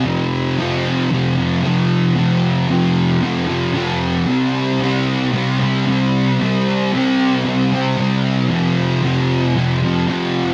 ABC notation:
X:1
M:4/4
L:1/8
Q:1/4=114
K:Flyd
V:1 name="Distorted electric guitar" clef=bass
[F,,C,F,]2 [F,,C,F,]2 [F,,C,F,] [C,F,] [F,,C,F,]2 | [F,,C,F,]2 [F,,C,F,]2 [F,,C,F,] [C,F,] [F,,C,F,]2 | [C,G,C]2 [C,G,C]2 [C,G,C] [G,C] [C,G,C]2 | [C,G,C]2 [C,G,C]2 [C,G,C] [G,C] [C,G,C]2 |
[F,,C,F,]2 [F,,C,F,]2 [F,,C,F,] [C,F,] [F,,C,F,]2 |]